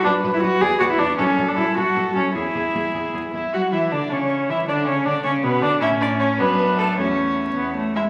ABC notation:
X:1
M:6/8
L:1/16
Q:3/8=104
K:Dlyd
V:1 name="Violin"
B6 B6 | A6 A6 | G8- G z e2 | f2 e2 d2 c4 e2 |
d2 c2 d2 c2 B2 d2 | e2 d2 c2 B4 A2 | c6 z4 e2 |]
V:2 name="Violin"
B2 B2 B2 d2 d2 d2 | A2 A2 A2 A2 A2 A2 | G2 G2 G2 G2 G2 E2 | F2 E2 D2 C4 E2 |
D2 C2 D2 C2 B,2 D2 | E2 D2 C2 B,4 A,2 | C6 z4 E2 |]
V:3 name="Viola"
D3 E F2 G2 F E D2 | C3 D E2 F4 C2 | E8- E2 z2 | F2 E2 D2 C4 E2 |
D2 C2 D2 C2 B,2 D2 | C6 D6 | A,6 B,2 A,2 G,2 |]
V:4 name="Cello" clef=bass
F,,2 F,,2 F,,2 E,,2 E,,2 E,,2 | F,,2 F,,2 F,,2 F,,2 F,,2 F,,2 | E,,2 E,,2 E,,2 E,,2 E,,2 E,,2 | F,2 E,2 D,2 C,4 E,2 |
D,2 C,2 D,2 C,2 B,,2 D,2 | A,,6 F,,6 | E,,6 E,,4 z2 |]